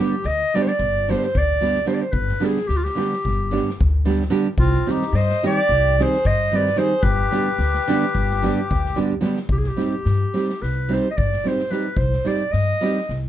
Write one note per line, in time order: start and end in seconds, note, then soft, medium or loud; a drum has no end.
0.00 0.14 D3 medium
0.00 0.14 G3 medium
0.00 0.14 B3 medium
0.00 0.14 D4 medium
0.00 0.15 G4 medium
0.00 0.28 G4 loud
0.23 0.43 D2 loud
0.23 0.57 D#5 loud
0.23 snare soft
0.54 0.70 D3 medium
0.54 0.70 G3 medium
0.54 0.71 B3 medium
0.54 0.71 D4 medium
0.54 0.71 G4 medium
0.54 0.64 D5 loud
0.54 snare soft
0.62 0.69 C5 medium
0.67 1.12 D5 loud
0.67 snare soft
0.79 1.14 G1 medium
0.79 kick medium
0.79 snare soft
1.08 1.25 D3 medium
1.08 1.25 G3 medium
1.08 1.25 B3 medium
1.08 1.26 D4 medium
1.08 1.26 G4 medium
1.08 1.16 C5 loud
1.08 snare soft
1.18 1.24 C5 medium
1.23 1.39 C5 loud
1.23 snare soft
1.35 1.82 D2 loud
1.35 1.87 D5 loud
1.35 kick medium
1.61 1.77 D3 medium
1.61 1.77 G3 medium
1.61 1.78 B3 medium
1.61 1.78 D4 medium
1.61 1.78 G4 medium
1.61 snare soft
1.75 snare soft
1.86 2.02 D3 medium
1.86 2.02 G3 medium
1.86 2.02 B3 medium
1.86 2.02 D4 medium
1.86 2.03 G4 medium
1.86 1.96 C5 medium
1.86 snare soft
1.94 2.03 D5 medium
2.01 2.14 C5 medium
2.12 2.31 G1 medium
2.12 2.47 B4 medium
2.12 kick medium
2.29 snare soft
2.40 2.57 D3 medium
2.40 2.57 G3 medium
2.40 2.58 B3 medium
2.40 2.58 D4 medium
2.40 2.58 G4 medium
2.44 2.69 G#4 medium
2.44 snare soft
2.57 snare soft
2.67 2.87 D2 medium
2.67 2.78 G4 loud
2.67 snare soft
2.77 2.85 F4 medium
2.84 3.80 G4 medium
2.84 snare soft
2.95 3.12 D3 medium
2.95 3.13 G3 medium
2.95 3.13 B3 medium
2.95 3.14 D4 medium
2.95 3.14 G4 medium
3.00 snare soft
3.13 snare soft
3.25 3.58 G1 medium
3.25 kick medium
3.25 snare soft
3.51 3.68 D3 medium
3.51 3.69 G3 medium
3.51 3.69 B3 medium
3.51 3.69 D4 medium
3.51 3.69 G4 medium
3.56 snare soft
3.69 snare soft
3.80 4.27 D2 medium
3.80 kick medium
4.05 4.22 D3 medium
4.05 4.22 G3 medium
4.05 4.22 B3 medium
4.05 4.22 D4 medium
4.05 4.23 G4 medium
4.05 snare soft
4.21 snare soft
4.30 4.46 D3 medium
4.30 4.46 G3 medium
4.30 4.47 B3 medium
4.30 4.47 D4 medium
4.30 4.47 G4 medium
4.34 snare soft
4.58 4.76 C2 loud
4.58 4.87 C4 loud
4.58 4.92 F4 loud
4.58 kick loud
4.73 snare soft
4.87 5.03 D#3 medium
4.87 5.03 G3 medium
4.87 5.03 C4 medium
4.87 5.03 D#4 medium
4.87 5.14 D#4 medium
4.87 5.04 G4 medium
4.87 snare soft
4.91 5.18 G4 loud
5.02 snare soft
5.13 5.31 G2 loud
5.13 5.44 C5 loud
5.13 5.45 D#5 loud
5.13 snare soft
5.30 snare soft
5.43 5.59 D#3 medium
5.43 5.59 G3 medium
5.43 5.59 C4 medium
5.43 5.59 D#4 medium
5.43 5.59 G4 medium
5.43 5.96 G4 loud
5.43 6.04 D5 loud
5.43 snare soft
5.69 6.02 C2 medium
5.69 kick medium
5.69 snare soft
5.99 6.15 D#3 medium
5.99 6.15 G3 medium
5.99 6.15 C4 medium
5.99 6.15 D#4 medium
5.99 6.16 G4 medium
5.99 6.25 G#4 loud
5.99 6.28 C5 loud
5.99 snare soft
6.13 snare soft
6.25 6.72 G2 medium
6.25 6.53 C5 medium
6.25 6.58 D#5 loud
6.25 kick medium
6.51 6.68 D#3 medium
6.51 6.68 G3 medium
6.51 6.68 C4 medium
6.51 6.68 D#4 medium
6.51 6.68 G4 medium
6.51 6.78 B4 medium
6.51 snare soft
6.56 6.79 D5 loud
6.66 snare soft
6.76 6.92 D#3 medium
6.76 6.92 G3 medium
6.76 6.93 C4 medium
6.76 6.93 D#4 medium
6.76 6.93 G4 medium
6.76 7.03 G#4 medium
6.76 7.04 C5 loud
6.76 snare soft
7.02 7.21 G1 loud
7.02 8.99 G4 loud
7.02 8.99 B4 loud
7.02 kick loud
7.31 7.48 D3 medium
7.31 7.48 G3 medium
7.31 7.48 B3 medium
7.31 7.48 D4 medium
7.31 7.49 G4 medium
7.31 snare soft
7.58 7.77 D2 loud
7.58 snare soft
7.74 snare soft
7.88 8.04 D3 loud
7.88 8.05 G3 medium
7.88 8.04 B3 medium
7.88 8.05 D4 medium
7.88 8.05 G4 loud
7.88 snare soft
8.02 snare soft
8.15 8.48 G1 loud
8.15 kick medium
8.15 snare soft
8.31 snare soft
8.42 8.59 D3 medium
8.42 8.59 G3 medium
8.42 8.60 B3 medium
8.42 8.60 D4 medium
8.42 8.60 G4 medium
8.42 snare soft
8.71 9.18 D2 loud
8.71 kick medium
8.86 snare soft
8.96 9.13 D3 medium
8.96 9.13 G3 medium
8.96 9.13 B3 medium
8.96 9.13 D4 medium
8.96 9.14 G4 medium
9.21 9.37 D3 medium
9.21 9.37 G3 medium
9.21 9.38 B3 medium
9.21 9.38 D4 medium
9.21 9.38 G4 medium
9.21 snare soft
9.37 snare soft
9.49 9.67 C2 medium
9.49 9.60 G4 medium
9.49 kick medium
9.58 9.69 G#4 medium
9.64 10.64 G4 medium
9.64 snare soft
9.76 9.93 G3 medium
9.76 9.94 C4 medium
9.76 9.94 D#4 medium
9.76 9.95 G4 medium
9.76 snare soft
10.05 10.24 G2 medium
10.05 snare soft
10.34 10.50 G3 medium
10.34 10.50 C4 medium
10.34 10.51 D#4 medium
10.34 10.51 G4 medium
10.34 snare soft
10.50 snare soft
10.62 10.96 C2 medium
10.62 10.95 B4 medium
10.62 snare soft
10.89 11.06 G3 medium
10.89 11.06 C4 medium
10.89 11.07 D#4 medium
10.89 11.07 G4 medium
10.93 11.10 C5 medium
10.93 snare soft
11.11 11.19 D#5 medium
11.17 11.35 G2 medium
11.17 11.49 D5 medium
11.17 kick medium
11.33 snare soft
11.44 11.60 G3 soft
11.44 11.61 C4 medium
11.44 11.61 D#4 soft
11.44 11.62 G4 medium
11.44 11.73 C5 medium
11.44 snare soft
11.59 snare soft
11.70 11.86 G3 medium
11.70 11.86 C4 medium
11.70 11.86 D#4 soft
11.70 11.87 G4 medium
11.70 11.99 B4 medium
11.70 snare soft
11.97 12.15 C2 medium
11.97 12.29 C5 loud
11.97 kick medium
12.13 snare soft
12.25 12.41 G3 medium
12.25 12.42 C4 medium
12.25 12.42 D#4 medium
12.25 12.43 G4 medium
12.25 12.53 D5 medium
12.25 snare soft
12.52 12.71 G2 medium
12.52 13.16 D#5 loud
12.52 snare soft
12.81 12.98 G3 medium
12.81 12.98 C4 medium
12.81 12.98 D#4 medium
12.81 12.99 G4 medium
12.81 snare soft
12.97 snare soft
13.09 13.29 C2 medium
13.09 snare soft